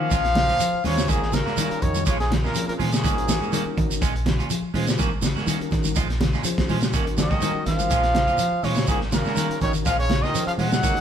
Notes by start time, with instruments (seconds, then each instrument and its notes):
Already playing: trombone F3, trombone section F3, trumpet F5
0.00 clean electric guitar A#3 C#4 F#4
0.11 fingered electric bass A#1, clean electric guitar G#3 C#4 F4, kick, closed hi-hat, shekere
0.25 muted clean electric guitar stroke, snare, closed hi-hat
0.35 clean electric guitar C#3, muted clean electric guitar stroke, snare, closed hi-hat, high conga
0.48 fingered electric bass A#2, clean electric guitar C#4 F4, closed hi-hat, shekere
0.60 clean electric guitar F3, muted clean electric guitar stroke, closed hi-hat, shekere
0.73 muted fingered electric bass stroke
0.84 fingered electric bass D#2, trombone section C#3, trombone C#3, clean electric guitar G#3 C#4 F4, tonewheel organ C#4 F4 G#4 C5, trumpet C#5, snare, open hi-hat, high conga, low conga, shekere
0.97 clean electric guitar C#3, muted clean electric guitar stroke, snare, shekere
1.08 fingered electric bass G#1, trombone section G#2, trombone A#2, clean electric guitar D#3 A#3 C#4 F#4, trumpet G#4, kick, closed hi-hat, high conga, shekere
1.22 muted clean electric guitar stroke, snare
1.32 trombone section A#2, clean electric guitar C#3, trombone C#3, trumpet A#4, muted clean electric guitar stroke, snare, closed hi-hat, high conga, shekere
1.46 fingered electric bass G#2, clean electric guitar A#3 C#4 F#4, snare, shekere
1.57 clean electric guitar D#3 A#3 C#4 F#4, closed hi-hat, high conga, shekere
1.69 tonewheel organ C#4 D#4 F#4 A#4, muted clean electric guitar stroke, muted fingered electric bass stroke, closed hi-hat
1.81 fingered electric bass F2, trombone section C#3, trombone D#3, trumpet C#5, muted clean electric guitar stroke, kick, closed hi-hat, low conga, shekere
1.95 clean electric guitar D#3, closed hi-hat, high conga, shekere
2.06 fingered electric bass A#1, trombone section C#3, trombone C#3, clean electric guitar F3 G#3 C#4 F4, trumpet C#5, kick, closed hi-hat, shekere
2.19 trombone section G#2, trombone G#2, trumpet G#4, muted clean electric guitar stroke, snare, closed hi-hat
2.30 clean electric guitar C#3, muted clean electric guitar stroke, snare, closed hi-hat, high conga, low conga
2.43 fingered electric bass A#2, trombone section A#2, trombone A#2, clean electric guitar G#3 C#4 F4, trumpet A#4, snare, shekere
2.54 clean electric guitar F3, tonewheel organ C4 C#4 F4 G#4, muted clean electric guitar stroke, closed hi-hat, shekere
2.68 trombone section A#2, trombone A#2, trumpet A#4, muted fingered electric bass stroke, closed hi-hat
2.78 trombone section G#2, fingered electric bass A#2, trombone A#2, clean electric guitar F3 G#3 C#4 F4, trumpet G#4, open hi-hat, high conga, low conga, shekere
2.92 clean electric guitar C#3, muted clean electric guitar stroke, snare, closed hi-hat, shekere
3.04 fingered electric bass G#1, clean electric guitar D#3 A#3 C#4 F#4, kick, closed hi-hat, high conga, shekere
3.16 tonewheel organ C#4 D#4 F#4 A#4, muted clean electric guitar stroke, closed hi-hat
3.28 muted clean electric guitar stroke, snare, closed hi-hat, high conga, low conga, shekere
3.40 fingered electric bass G#2, clean electric guitar A#3 C#4 F#4, shekere
3.52 clean electric guitar D#3 A#3 C#4 F#4, tonewheel organ C#4 D#4 F#4 A#4, closed hi-hat, high conga, shekere
3.65 tonewheel organ C#4 D#4 F#4 A#4, muted fingered electric bass stroke, muted clean electric guitar stroke
3.77 fingered electric bass G#1, muted clean electric guitar stroke, kick, closed hi-hat, low conga, shekere
3.90 clean electric guitar D#3, closed hi-hat, shekere
4.01 fingered electric bass A#1, clean electric guitar G#3 C#4 F4, kick, closed hi-hat, shekere
4.14 muted clean electric guitar stroke, closed hi-hat
4.26 clean electric guitar C#3, muted clean electric guitar stroke, snare, closed hi-hat, high conga, low conga
4.38 fingered electric bass A#2, clean electric guitar C#4 F4, closed hi-hat, shekere
4.50 clean electric guitar F3, muted clean electric guitar stroke, closed hi-hat, shekere
4.62 muted fingered electric bass stroke
4.74 fingered electric bass A#2, clean electric guitar G#3 C#4 F4, tonewheel organ C#4 F4 G#4 C5, open hi-hat, high conga, low conga, shekere
4.87 clean electric guitar C#3, muted clean electric guitar stroke, snare, shekere
4.98 fingered electric bass G#1, clean electric guitar D#3 A#3 C#4 F#4, kick, closed hi-hat, high conga, shekere
5.11 muted clean electric guitar stroke
5.22 clean electric guitar C#3, muted clean electric guitar stroke, snare, closed hi-hat, high conga, low conga, shekere
5.36 fingered electric bass G#2, clean electric guitar A#3 C#4 F#4, snare, shekere
5.47 clean electric guitar D#3 A#3 C#4 F#4, closed hi-hat, high conga, shekere
5.60 tonewheel organ C#4 D#4 F#4 A#4, muted clean electric guitar stroke, muted fingered electric bass stroke, closed hi-hat
5.71 fingered electric bass G#1, muted clean electric guitar stroke, kick, snare, closed hi-hat, low conga, shekere
5.84 clean electric guitar D#3, closed hi-hat, high conga, shekere
5.95 fingered electric bass A#1, clean electric guitar F3 G#3 F4, muted clean electric guitar stroke, kick, closed hi-hat, shekere
6.09 muted clean electric guitar stroke, snare, closed hi-hat
6.20 clean electric guitar C#3, muted clean electric guitar stroke, snare, closed hi-hat, high conga, low conga
6.33 fingered electric bass A#2, clean electric guitar G#3 C#4 F4, snare, shekere
6.44 clean electric guitar F3, tonewheel organ C#4 F4 G#4 C5, muted clean electric guitar stroke, closed hi-hat, shekere
6.58 muted fingered electric bass stroke, kick, snare, closed hi-hat
6.68 fingered electric bass A#2, clean electric guitar F3 G#3 C#4 F4, open hi-hat, high conga, low conga, shekere
6.82 clean electric guitar C#3, muted clean electric guitar stroke, snare, closed hi-hat, high conga, shekere
6.93 fingered electric bass G#1, clean electric guitar D#3 A#3 C#4 F#4, kick, closed hi-hat, shekere
7.06 tonewheel organ C#4 D#4 F#4 A#4, muted clean electric guitar stroke, closed hi-hat
7.18 clean electric guitar C#3, trombone section D#3, trombone F#3, trumpet D#5, muted clean electric guitar stroke, snare, closed hi-hat, high conga, low conga, shekere
7.30 fingered electric bass G#2, clean electric guitar A#3 C#4 F#4, kick, snare, shekere
7.40 clean electric guitar D#3 A#3 C#4 F#4, tonewheel organ C#4 D#4 F#4 C5, closed hi-hat, high conga, shekere
7.54 tonewheel organ C#4 D#4 F#4 A#4, muted fingered electric bass stroke, muted clean electric guitar stroke
7.66 fingered electric bass G#1, trombone section F3, trombone F3, trumpet F5, muted clean electric guitar stroke, snare, closed hi-hat, low conga, shekere
7.79 clean electric guitar D#3, closed hi-hat, high conga, shekere
7.90 fingered electric bass A#1, clean electric guitar G#3 C#4 F4, kick, closed hi-hat, shekere
8.03 muted clean electric guitar stroke, snare, closed hi-hat
8.14 clean electric guitar C#3, muted clean electric guitar stroke, snare, closed hi-hat, high conga
8.27 fingered electric bass A#2, clean electric guitar C#4 F4, closed hi-hat, shekere
8.38 clean electric guitar F3, muted clean electric guitar stroke, closed hi-hat, shekere
8.52 muted fingered electric bass stroke
8.63 fingered electric bass A#2, trombone section C#3, trombone C#3, clean electric guitar G#3 C#4 F4, tonewheel organ C#4 F4 G#4 C5, trumpet C#5, open hi-hat, high conga, low conga, shekere
8.75 clean electric guitar C#3, muted clean electric guitar stroke, snare, shekere
8.87 fingered electric bass G#1, trombone section G#2, trombone A#2, clean electric guitar D#3 A#3 C#4 F#4, trumpet G#4, kick, closed hi-hat, high conga, shekere
9.01 muted clean electric guitar stroke, snare
9.11 trombone section A#2, clean electric guitar C#3, trombone C#3, trumpet A#4, muted clean electric guitar stroke, snare, closed hi-hat, high conga, low conga, shekere
9.25 fingered electric bass G#2, clean electric guitar A#3 C#4 F#4, snare, shekere
9.36 clean electric guitar D#3 A#3 C#4 F#4, closed hi-hat, high conga, shekere
9.49 tonewheel organ C#4 D#4 F#4 A#4, muted fingered electric bass stroke, muted clean electric guitar stroke, closed hi-hat
9.61 fingered electric bass G#1, trombone section C#3, trombone D#3, trumpet C#5, muted clean electric guitar stroke, kick, snare, closed hi-hat, low conga, shekere
9.74 clean electric guitar D#3, closed hi-hat, shekere
9.85 fingered electric bass A#1, trombone section F3, trombone F3, clean electric guitar G#3 C#4 F4, trumpet F5, kick, closed hi-hat, shekere
9.98 trombone section C#3, trombone C#3, trumpet C#5, muted clean electric guitar stroke, closed hi-hat
10.09 clean electric guitar C#3, muted clean electric guitar stroke, snare, closed hi-hat, high conga
10.22 fingered electric bass A#2, trombone section D#3, trombone D#3, clean electric guitar C#4 F4, trumpet D#5, snare, shekere
10.33 clean electric guitar F3, tonewheel organ C#4 F4 G#4 C5, muted clean electric guitar stroke, closed hi-hat, shekere
10.47 trombone section F3, trombone F3, trumpet F5, muted fingered electric bass stroke, closed hi-hat
10.58 fingered electric bass A#2, trombone section F#3, clean electric guitar G#3 C#4 F4, trombone G#3, trumpet F#5, open hi-hat, high conga, low conga, shekere
10.71 clean electric guitar C#3, muted clean electric guitar stroke, snare, closed hi-hat, high conga, shekere
10.83 fingered electric bass G#1, clean electric guitar D#3 A#3 C#4 F#4, kick, closed hi-hat, high conga, shekere
10.93 tonewheel organ D#4 F#4 A#4 C#5, muted clean electric guitar stroke, closed hi-hat